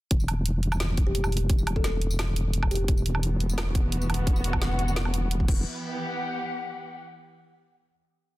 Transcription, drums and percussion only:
0.11 kick loud
0.11 closed hi-hat medium
0.20 tambourine soft
0.28 closed hi-hat medium
0.28 low woodblock medium
0.46 closed hi-hat medium
0.63 closed hi-hat soft
0.72 tambourine soft
0.72 low woodblock medium
0.80 snare loud
0.80 closed hi-hat medium
0.97 kick loud
0.97 closed hi-hat medium
1.15 closed hi-hat medium
1.24 tambourine soft
1.24 low woodblock medium
1.32 closed hi-hat medium
1.37 closed hi-hat medium
1.50 kick loud
1.50 closed hi-hat medium
1.58 tambourine soft
1.67 closed hi-hat medium
1.67 low woodblock medium
1.76 kick medium
1.84 snare medium
1.84 closed hi-hat medium
2.02 closed hi-hat soft
2.11 tambourine soft
2.19 snare loud
2.19 closed hi-hat medium
2.19 low woodblock medium
2.36 closed hi-hat medium
2.53 closed hi-hat medium
2.63 kick medium
2.63 low woodblock medium
2.71 closed hi-hat medium
2.71 tambourine soft
2.75 closed hi-hat medium
2.88 kick loud
2.88 closed hi-hat medium
2.97 tambourine soft
3.06 closed hi-hat medium
3.15 low woodblock medium
3.23 closed hi-hat medium
3.40 closed hi-hat soft
3.49 tambourine soft
3.58 snare loud
3.58 closed hi-hat medium
3.58 low woodblock medium
3.75 kick loud
3.75 closed hi-hat medium
3.92 closed hi-hat medium
4.01 tambourine soft
4.10 closed hi-hat medium
4.10 low woodblock medium
4.14 closed hi-hat medium
4.27 kick loud
4.27 closed hi-hat medium
4.36 tambourine soft
4.44 closed hi-hat medium
4.53 kick medium
4.53 low woodblock medium
4.62 snare medium
4.62 closed hi-hat medium
4.79 closed hi-hat soft
4.88 tambourine soft
4.96 snare loud
4.96 closed hi-hat medium
5.05 low woodblock medium
5.14 closed hi-hat medium
5.31 closed hi-hat medium
5.40 kick medium
5.48 kick loud
5.48 crash medium

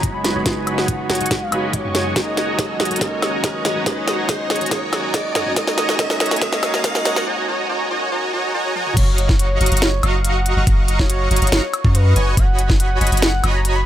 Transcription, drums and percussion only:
0.03 kick loud
0.03 closed hi-hat medium
0.24 snare medium
0.24 closed hi-hat medium
0.46 kick loud
0.46 snare medium
0.46 closed hi-hat medium
0.67 closed hi-hat medium
0.67 high woodblock medium
0.78 snare medium
0.88 kick loud
0.88 closed hi-hat medium
1.10 snare medium
1.10 closed hi-hat soft
1.15 closed hi-hat medium
1.21 closed hi-hat soft
1.26 closed hi-hat medium
1.31 kick loud
1.31 snare medium
1.31 closed hi-hat medium
1.52 closed hi-hat medium
1.52 high woodblock medium
1.73 kick loud
1.73 closed hi-hat medium
1.95 snare medium
1.95 closed hi-hat medium
2.16 kick loud
2.16 snare medium
2.16 closed hi-hat medium
2.37 snare medium
2.37 closed hi-hat medium
2.59 kick loud
2.59 snare medium
2.59 closed hi-hat medium
2.80 snare medium
2.80 closed hi-hat soft
2.85 closed hi-hat medium
2.91 closed hi-hat soft
2.96 closed hi-hat medium
3.01 kick loud
3.01 snare medium
3.01 closed hi-hat medium
3.22 snare medium
3.22 closed hi-hat medium
3.22 high woodblock medium
3.44 kick loud
3.44 snare medium
3.44 closed hi-hat medium
3.65 snare medium
3.65 closed hi-hat medium
3.86 kick loud
3.86 snare medium
3.86 closed hi-hat medium
4.08 snare medium
4.08 closed hi-hat medium
4.29 kick loud
4.29 snare medium
4.29 closed hi-hat medium
4.50 snare medium
4.50 closed hi-hat soft
4.56 closed hi-hat medium
4.61 closed hi-hat soft
4.66 closed hi-hat medium
4.71 kick loud
4.71 snare medium
4.71 closed hi-hat medium
4.93 snare medium
4.93 closed hi-hat medium
4.93 high woodblock medium
5.14 kick loud
5.14 snare medium
5.14 closed hi-hat medium
5.35 snare medium
5.35 closed hi-hat medium
5.56 kick medium
5.56 snare medium
5.56 closed hi-hat medium
5.67 snare medium
5.78 snare medium
5.78 closed hi-hat medium
5.89 snare medium
5.99 kick loud
5.99 snare medium
5.99 closed hi-hat medium
6.10 snare medium
6.20 snare loud
6.20 closed hi-hat soft
6.26 closed hi-hat medium
6.31 snare medium
6.31 closed hi-hat soft
6.36 closed hi-hat medium
6.42 kick loud
6.42 snare loud
6.42 closed hi-hat medium
6.53 snare medium
6.63 snare loud
6.63 closed hi-hat medium
6.63 high woodblock medium
6.74 snare medium
6.84 kick loud
6.84 snare loud
6.84 closed hi-hat medium
6.95 snare medium
7.05 snare loud
7.05 closed hi-hat medium
7.16 snare medium
8.76 high tom medium
8.87 mid tom medium
8.97 kick loud
8.97 closed hi-hat medium
8.97 crash loud
9.18 closed hi-hat medium
9.29 kick loud
9.29 snare soft
9.39 closed hi-hat medium
9.61 closed hi-hat medium
9.66 closed hi-hat medium
9.72 closed hi-hat medium
9.77 closed hi-hat medium
9.82 snare loud
9.82 closed hi-hat medium
10.03 closed hi-hat medium
10.03 high woodblock medium
10.25 closed hi-hat medium
10.46 closed hi-hat medium
10.67 kick loud
10.67 closed hi-hat medium
10.88 closed hi-hat medium
10.99 kick medium
10.99 snare soft
11.10 closed hi-hat medium
11.31 closed hi-hat medium
11.36 closed hi-hat medium
11.42 closed hi-hat medium
11.47 closed hi-hat medium
11.52 snare loud
11.52 closed hi-hat medium
11.74 closed hi-hat medium
11.74 high woodblock medium
11.85 kick loud
11.95 closed hi-hat medium
12.16 closed hi-hat medium
12.37 kick loud
12.37 closed hi-hat medium
12.59 closed hi-hat medium
12.70 kick loud
12.70 snare soft
12.80 closed hi-hat medium
13.01 closed hi-hat medium
13.07 closed hi-hat medium
13.12 closed hi-hat soft
13.17 closed hi-hat medium
13.22 snare loud
13.22 closed hi-hat medium
13.44 closed hi-hat medium
13.44 high woodblock medium
13.65 closed hi-hat medium

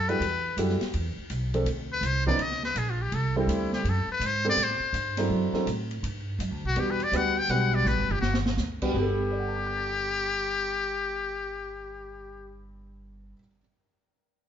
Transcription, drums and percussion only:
0.09 ride soft
0.22 ride medium
0.58 hi-hat pedal medium
0.58 ride medium
0.69 snare soft
0.81 snare soft
0.81 ride medium
0.94 ride medium
1.30 hi-hat pedal medium
1.30 ride medium
1.54 ride soft
1.66 ride medium
2.03 hi-hat pedal medium
2.03 ride medium
2.26 kick medium
2.39 ride medium
2.51 snare soft
2.63 snare soft
2.76 hi-hat pedal medium
2.76 ride medium
3.12 ride medium
3.49 hi-hat pedal medium
3.49 ride medium
3.73 snare soft
3.85 ride medium
4.21 hi-hat pedal soft
4.21 ride medium
4.58 ride medium
4.94 hi-hat pedal soft
4.94 ride medium
5.17 snare soft
5.17 ride medium
5.54 snare soft
5.67 hi-hat pedal medium
5.67 ride medium
5.91 ride soft
6.04 ride medium
6.40 hi-hat pedal medium
6.40 ride medium
6.76 ride medium
7.00 ride soft
7.13 hi-hat pedal medium
7.13 ride medium
7.49 ride medium
7.86 hi-hat pedal medium
7.86 mid tom soft
7.98 mid tom soft
8.11 mid tom medium
8.22 snare medium
8.34 snare medium
8.46 snare medium
8.57 snare medium
8.57 hi-hat pedal medium
8.82 kick medium
8.82 crash medium

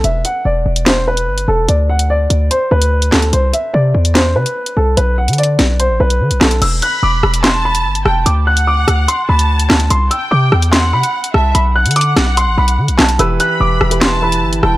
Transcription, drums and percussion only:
0.04 closed hi-hat medium
0.25 closed hi-hat medium
0.76 closed hi-hat medium
0.86 snare loud
0.86 clap medium
0.86 closed hi-hat medium
1.17 closed hi-hat medium
1.38 closed hi-hat medium
1.69 closed hi-hat medium
1.99 closed hi-hat medium
2.30 closed hi-hat medium
2.51 closed hi-hat medium
2.82 closed hi-hat medium
3.02 closed hi-hat medium
3.12 snare loud
3.12 clap loud
3.22 closed hi-hat medium
3.33 closed hi-hat medium
3.54 closed hi-hat medium
4.05 closed hi-hat medium
4.15 snare loud
4.15 clap loud
4.15 closed hi-hat medium
4.46 closed hi-hat medium
4.66 closed hi-hat medium
4.97 closed hi-hat medium
5.28 closed hi-hat medium
5.33 closed hi-hat medium
5.38 closed hi-hat medium
5.43 closed hi-hat medium
5.59 snare medium
5.59 closed hi-hat medium
5.80 closed hi-hat medium
6.10 closed hi-hat medium
6.31 closed hi-hat medium
6.41 snare loud
6.41 clap medium
6.51 closed hi-hat medium
6.62 closed hi-hat medium
6.62 crash loud
6.82 closed hi-hat medium
7.23 cross-stick loud
7.34 closed hi-hat medium
7.44 snare loud
7.44 clap loud
7.44 closed hi-hat medium
7.75 closed hi-hat medium
7.95 closed hi-hat medium
8.06 cross-stick loud
8.26 closed hi-hat medium
8.57 closed hi-hat medium
8.88 cross-stick loud
8.88 closed hi-hat medium
9.08 closed hi-hat medium
9.39 closed hi-hat medium
9.60 closed hi-hat medium
9.70 cross-stick loud
9.70 snare loud
9.70 clap medium
9.80 closed hi-hat medium
9.90 closed hi-hat medium
10.11 closed hi-hat medium
10.52 cross-stick loud
10.62 closed hi-hat medium
10.73 snare loud
10.73 clap medium
10.73 closed hi-hat medium
11.03 closed hi-hat medium
11.24 closed hi-hat medium
11.34 cross-stick loud
11.55 closed hi-hat medium
11.86 closed hi-hat medium
11.91 closed hi-hat medium
11.96 closed hi-hat medium
12.01 closed hi-hat medium
12.17 cross-stick loud
12.17 snare medium
12.17 closed hi-hat medium
12.37 closed hi-hat medium
12.68 closed hi-hat medium
12.88 closed hi-hat medium
12.99 cross-stick loud
12.99 snare loud
12.99 clap loud
13.09 closed hi-hat medium
13.19 closed hi-hat medium
13.40 closed hi-hat medium
13.81 cross-stick loud
13.91 closed hi-hat medium
14.01 snare loud
14.01 clap loud
14.01 closed hi-hat medium
14.32 closed hi-hat medium
14.53 closed hi-hat medium
14.63 cross-stick loud

